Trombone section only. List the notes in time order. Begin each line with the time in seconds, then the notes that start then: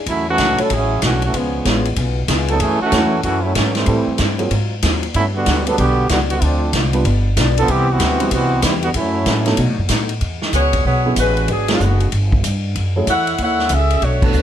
0.09 F#3 A3 C#4 E4
0.29 E3 A3 C#4 F#4
0.62 F#3 C#4 E4 A4
0.73 F#3 C#4 E4 G#4
1.05 E3 A3 C#4 F#4
1.25 E3 A3 C#4 F#4
1.36 F3 G#3 B3 C#4
2.50 F#3 B3 D#4 A4
2.61 E3 A3 C#4 G#4
2.82 E3 A3 C#4 F#4
3.24 E3 A3 C#4 F#4
3.43 F#3 A3 C#4 E4
3.55 E3 F#3 A3 C#4
3.76 E3 G3 A3 C4
5.16 F#3 A3 C#4 E4
5.35 D3 G3 B3 F#4
5.66 F#3 B3 D4 A4
5.79 D3 B3 F#4 G4
6.10 D3 G3 B3 F#4
6.31 D3 G3 B3 F#4
6.42 F3 A3 C4 D4
7.58 F3 B3 D4 A4
7.71 E3 B3 C4 G4
7.91 E3 B3 C4 F#4
8.33 E3 B3 C4 F#4
8.65 G3 B3 C4 E4
8.84 D3 G3 B3 F#4
8.96 F#3 A3 C#4 E4